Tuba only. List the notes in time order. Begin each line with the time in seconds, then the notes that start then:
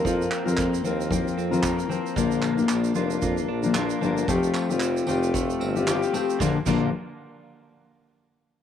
0.05 F2
0.47 F2
0.86 D#2
1.37 F2
2.16 A#1
2.58 A1
2.70 A#1
2.96 F1
3.23 F2
3.49 A#1
4.02 G1
4.28 F1
4.70 F1
5.08 F1
5.61 G1
6.40 A#1
6.67 A#1